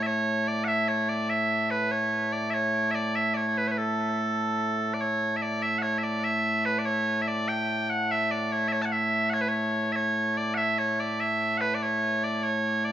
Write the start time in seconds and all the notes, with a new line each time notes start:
Already playing: A2 A3
0.03 C#5 E5
0.48 D5
0.64 E5 F#5
0.88 C#5
1.09 D5
1.30 E5
1.71 B4
1.91 C#5
2.33 D5
2.50 C#5 E5
2.91 D5 E5
3.15 E5
3.34 C#5 D5
3.47 C#5
3.58 B4
3.68 B4 C#5
3.78 A4
4.94 D5
5.01 C#5
5.37 E5
5.42 D5
5.62 E5
5.78 F#5
5.82 C#5
5.98 E5
6.03 D5
6.24 E5
6.65 B4
6.79 D5
6.86 C#5
7.22 E5
7.28 D5
7.48 G5
7.90 F#5
8.11 E5
8.31 D5
8.52 C#5
8.68 E5
8.72 C#5
8.82 F#5 A5
8.92 E5
9.30 C#5 F#5
9.41 B4
9.48 C#5
9.92 C#5 E5
10.37 D5
10.54 E5 F#5
10.78 C#5
11.00 D5
11.20 E5
11.58 B4 F#5
11.75 D5
11.83 C#5
12.24 D5
12.43 C#5
12.85 D5